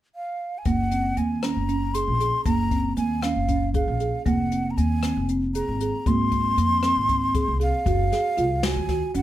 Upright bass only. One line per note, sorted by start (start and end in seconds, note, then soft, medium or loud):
0.66 1.12 F#1 medium
1.17 1.51 D#2 medium
1.56 2.02 F#1 medium
2.08 2.30 A#1 medium
2.46 2.92 F#1 medium
2.97 3.32 D#2 medium
3.36 3.82 F#1 medium
3.88 4.10 A#1 medium
4.26 4.72 F1 medium
4.77 5.12 D#2 medium
5.16 5.62 F1 medium
5.68 5.91 G#1 medium
6.06 6.52 G#1 medium
6.57 6.92 F2 medium
6.97 7.42 G#1 medium
7.48 7.71 C2 medium
7.86 8.09 F#1 medium
8.38 8.72 C2 medium
8.76 8.99 D#2 medium
9.15 9.22 F#1 medium